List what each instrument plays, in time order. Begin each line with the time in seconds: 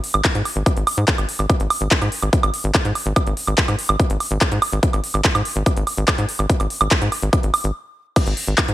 0.04 open hi-hat
0.14 analog synth bass G#1, closed hi-hat, high woodblock
0.25 kick, clap, closed hi-hat
0.35 analog synth bass G#2, closed hi-hat
0.45 open hi-hat, high woodblock
0.56 analog synth bass G#1, closed hi-hat
0.66 kick, closed hi-hat, high woodblock
0.77 analog synth bass G#1, closed hi-hat
0.87 open hi-hat, high woodblock
0.97 analog synth bass G#2, closed hi-hat
1.08 kick, clap, closed hi-hat
1.18 analog synth bass G#1, closed hi-hat, high woodblock
1.29 open hi-hat
1.39 analog synth bass G#1, closed hi-hat, high woodblock
1.50 kick, closed hi-hat, high woodblock
1.60 analog synth bass G#1, closed hi-hat
1.70 open hi-hat, high woodblock
1.81 analog synth bass G#1, closed hi-hat
1.91 kick, clap, closed hi-hat
2.02 analog synth bass G#2, closed hi-hat, high woodblock
2.12 open hi-hat
2.22 analog synth bass G#1, closed hi-hat, high woodblock
2.33 kick, closed hi-hat
2.43 analog synth bass G#1, closed hi-hat, high woodblock
2.54 open hi-hat
2.64 analog synth bass G#1, closed hi-hat
2.75 kick, clap, closed hi-hat, high woodblock
2.85 analog synth bass G#2, closed hi-hat
2.95 open hi-hat, high woodblock
3.06 analog synth bass G#1, closed hi-hat
3.16 kick, closed hi-hat, high woodblock
3.27 analog synth bass G#1, closed hi-hat
3.37 open hi-hat
3.47 analog synth bass G#1, closed hi-hat, high woodblock
3.58 kick, clap, closed hi-hat
3.68 analog synth bass G#2, closed hi-hat, high woodblock
3.79 open hi-hat
3.89 analog synth bass G#1, closed hi-hat, high woodblock
3.99 kick, closed hi-hat
4.10 analog synth bass G#1, closed hi-hat
4.20 open hi-hat, high woodblock
4.31 analog synth bass G#1, closed hi-hat
4.41 kick, clap, closed hi-hat, high woodblock
4.52 analog synth bass G#2, closed hi-hat
4.62 open hi-hat, high woodblock
4.72 analog synth bass G#1, closed hi-hat
4.83 kick, closed hi-hat
4.93 analog synth bass G#1, closed hi-hat, high woodblock
5.04 open hi-hat
5.14 analog synth bass G#1, closed hi-hat, high woodblock
5.25 kick, clap, closed hi-hat
5.35 analog synth bass G#2, closed hi-hat, high woodblock
5.45 open hi-hat
5.56 analog synth bass G#1, closed hi-hat
5.66 kick, closed hi-hat, high woodblock
5.77 analog synth bass G#1, closed hi-hat
5.87 open hi-hat, high woodblock
5.97 analog synth bass G#1, closed hi-hat
6.08 kick, clap, closed hi-hat, high woodblock
6.18 analog synth bass G#2, closed hi-hat
6.29 open hi-hat
6.39 analog synth bass G#1, closed hi-hat, high woodblock
6.50 kick, closed hi-hat
6.60 analog synth bass G#1, closed hi-hat, high woodblock
6.70 open hi-hat
6.81 analog synth bass G#1, closed hi-hat, high woodblock
6.91 kick, clap, closed hi-hat
7.02 analog synth bass G#2, closed hi-hat
7.12 open hi-hat, high woodblock
7.22 analog synth bass G#1, closed hi-hat
7.33 kick, closed hi-hat, high woodblock
7.43 analog synth bass G#1, closed hi-hat
7.54 open hi-hat, high woodblock
7.64 analog synth bass G#1, closed hi-hat
8.16 kick, closed hi-hat, crash, high woodblock
8.27 analog synth bass G#1, closed hi-hat
8.37 open hi-hat
8.47 analog synth bass G#1, closed hi-hat
8.58 kick, clap, closed hi-hat, high woodblock
8.68 analog synth bass G#2, closed hi-hat